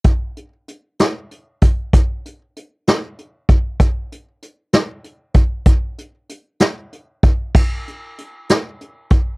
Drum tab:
CC |------|------|------|------|
HH |xxxxxx|xxxxxx|xxxxxx|xxxxxx|
SD |---o--|---o--|---o--|---o--|
BD |o----o|o----o|o----o|o----o|

CC |x-----|
HH |-xxxxx|
SD |---o--|
BD |o----o|